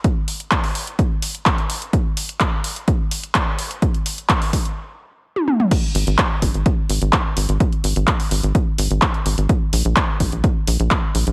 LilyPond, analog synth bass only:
\new Staff \with { instrumentName = "Analog synth bass" } { \clef bass \time 4/4 \key bes \dorian \tempo 4 = 127 r1 | r1 | r1 | r8 aes,,16 aes,,16 r8 aes,,16 aes,,16 r8 aes,,16 aes,,16 r8 aes,,16 aes,,16 |
r8 aes,,16 aes,,16 r8 aes,,16 aes,,16 r8 aes,,16 aes,,16 r8 aes,,16 aes,,16 | r8 bes,,16 bes,,16 r8 bes,,16 bes,,16 r8 bes,,16 bes,,16 r8 bes,,16 bes,,16 | }